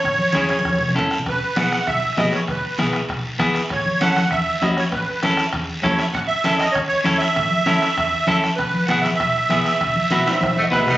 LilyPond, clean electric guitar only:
\new Staff \with { instrumentName = "Clean electric guitar" } { \time 4/4 \key a \lydian \tempo 4 = 197 r4 <cis' e' gis'>8 r4. <cis' e' a'>8 r8 | r4 <b e' gis'>8 r4. <b e' gis'>8 r8 | r4 <b e' gis'>8 r4. <b e' gis'>8 r8 | r4 <cis' e' a'>8 r4. <cis' e' fis'>8 r8 |
r4 <cis' e' a'>8 r4. <cis' e' a'>8 r8 | r4 <cis' e' a'>8 r4. <cis' e' a'>8 r8 | r4 <cis' e' a'>8 r4. <cis' e' a'>8 r8 | r4 <b e' gis'>8 r4. <b e' gis'>8 r8 |
r4 <b e' fis'>8 r4. <b e' b'>8 r8 | }